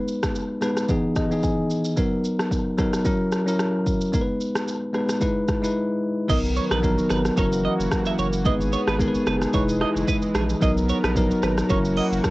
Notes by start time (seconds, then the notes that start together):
Already playing: G#3 B3 D#4 B4
0.08 shaker
0.23 kick, cross-stick, shaker
0.35 shaker
0.61 G#3 B3 D#4 B4, cross-stick, shaker
0.77 cross-stick, shaker
0.88 E3 B3 D#4 G#4, kick, shaker
1.16 D#5, kick, cross-stick, shaker
1.30 E3 B3 D#4 G#4, shaker
1.43 G#5, kick, shaker
1.70 shaker
1.85 shaker
1.96 F#3 B3 D#4 A#4, kick, shaker
2.24 shaker
2.39 cross-stick, shaker
2.51 kick, shaker
2.77 F#3 B3 D#4 A#4, kick, cross-stick, shaker
2.93 cross-stick, shaker
3.04 F#3 C#4 E4 A#4, kick, shaker
3.32 cross-stick, shaker
3.46 F#3 C#4 E4 A#4, shaker
3.59 cross-stick, shaker
3.86 kick, shaker
4.01 shaker
4.12 G#3 B3 D#4 A#4, kick, shaker
4.21 B4
4.40 shaker
4.55 cross-stick, shaker
4.68 shaker
4.93 G#3 B3 D#4 B4, cross-stick, shaker
5.09 cross-stick, shaker
5.20 G#3 D#4 E4 B4, kick, shaker
5.48 kick, cross-stick, shaker
5.62 G#3 D#4 E4 B4, shaker
6.28 B1 D#3 F#3 B3 D#4 A#4 D#5, kick, crash, shaker
6.45 shaker
6.57 C#5, shaker
6.71 A#1 B4, cross-stick, shaker
6.82 F#3 B3 D#4 A#4, kick, shaker
6.98 shaker
7.10 G#1 B4, cross-stick, shaker
7.25 cross-stick, shaker
7.37 F#1 E3 F#3 A#3 C#4 E4 F#4 A#4 C#5, kick, shaker
7.53 shaker
7.65 D#5
7.80 F#1, shaker
7.92 kick, cross-stick, shaker
8.06 E5, shaker
8.19 F#1 C#5, shaker
8.33 shaker
8.45 G#1 G#3 B3 D#4 G#4 B4 D#5, kick, shaker
8.61 shaker
8.73 C#5, shaker
8.88 G#1 B4, cross-stick, shaker
8.99 G#3 B3 D#4 A#4, kick, shaker
9.08 B4
9.15 shaker
9.27 F#1 B4, cross-stick, shaker
9.42 cross-stick, shaker
9.53 E1 E3 G#3 D#4 E4 B4 C#5, kick, shaker
9.69 shaker
9.81 D#5, cross-stick
9.96 F#1, shaker
10.08 B4, kick, shaker
10.22 shaker
10.35 A#1 G#4, cross-stick, shaker
10.49 shaker
10.61 B1 F#3 B3 D#4 A#4 D#5, kick, shaker
10.77 shaker
10.89 C#5, shaker
11.04 A#1 B4, cross-stick, shaker
11.15 F#3 B3 D#4 A#4, kick, shaker
11.31 shaker
11.43 G#1 B4, cross-stick, shaker
11.58 cross-stick, shaker
11.69 F#1 E3 F#3 A#3 C#4 E4 F#4 A#4 C#5, kick, shaker
11.85 shaker
11.97 D#5, open hi-hat
12.12 F#1, shaker
12.24 kick, cross-stick, shaker